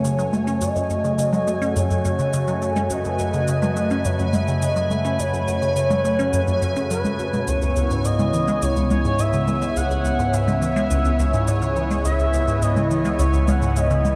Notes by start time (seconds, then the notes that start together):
Already playing: F#2 C#3 A3 F#4 C#5 G#5
0.05 C#3, cabasa
0.19 F#3, cabasa
0.33 A3, high conga, cabasa
0.47 C#4, cabasa
0.61 F#2 D#5, cabasa
0.76 F#2, cabasa
0.90 F#2, cabasa
1.04 C#3, cabasa
1.19 C#3, cabasa
1.33 F#3, high conga, cabasa
1.47 A3, cabasa
1.62 C#4, cabasa
1.76 F#2 C#5, cabasa
1.90 F#2, cabasa
2.05 F#2 C#5, cabasa
2.19 C#3, cabasa
2.33 C#3, cabasa
2.48 F#3, cabasa
2.62 A3, cabasa
2.76 C#4, high conga, cabasa
2.90 F#2 B4 D#5, cabasa
3.05 F#2, cabasa
3.19 F#2, cabasa
3.33 C#3, cabasa
3.48 C#3, cabasa
3.62 F#3, high conga, cabasa
3.76 A3, cabasa
3.90 C#4, cabasa
4.05 F#2 C#5, cabasa
4.19 F#2, cabasa
4.33 F#2 E5, high conga, cabasa
4.48 C#3, cabasa
4.62 C#3 D#5, cabasa
4.76 F#3, cabasa
4.91 A3 E5, high conga, cabasa
5.05 C#4, cabasa
5.19 F#2 C#5, cabasa
5.33 F#2, cabasa
5.48 F#2, cabasa
5.62 C#3, cabasa
5.76 C#3, cabasa
5.90 F#3, high conga, cabasa
6.05 A3, cabasa
6.19 C#4, cabasa
6.33 F#2, cabasa
6.48 F#2, cabasa
6.62 F#2, cabasa
6.76 C#4, cabasa
6.91 F#3 B4, cabasa
7.05 F#2, high conga, cabasa
7.19 F#2, cabasa
7.33 B2, high conga, cabasa
7.48 C#2 B3 E4 C#5, cabasa
7.62 C#2, cabasa
7.76 C#2, cabasa
7.91 G#2, cabasa
8.05 G#2 D#5, cabasa
8.19 C#3, high conga, cabasa
8.33 E3, cabasa
8.48 G#3, cabasa
8.62 C#2 C#5, cabasa
8.76 C#2, cabasa
8.91 C#2 C#5, high conga, cabasa
9.05 G#2 C#5, cabasa
9.19 G#2 E5, cabasa
9.33 C#3, cabasa
9.48 E3, high conga, cabasa
9.62 G#3, cabasa
9.76 C#2 F#5, cabasa
9.91 C#2, cabasa
10.05 C#2, cabasa
10.19 G#2, cabasa
10.33 G#2 E5, cabasa
10.48 C#3, high conga, cabasa
10.62 E3 E5, cabasa
10.76 G#3, cabasa
10.91 C#2, cabasa
11.05 C#2, cabasa
11.19 C#2, cabasa
11.33 G#2, cabasa
11.48 G#2 C#5, cabasa
11.62 C#3, cabasa
11.76 E3, cabasa
11.91 G#3, high conga, cabasa
12.05 C#2 E5, cabasa
12.19 C#2, cabasa
12.33 C#2, cabasa
12.48 G#2, cabasa
12.62 G#2 D#5, cabasa
12.76 C#3, high conga, cabasa
12.91 E3, cabasa
13.05 G#3, cabasa
13.19 C#2 C#5, cabasa
13.34 C#2, cabasa
13.48 C#2 F#5, high conga, cabasa
13.62 G#2, cabasa
13.76 G#2 D#5, cabasa
13.90 C#3, cabasa
14.05 E3, high conga, cabasa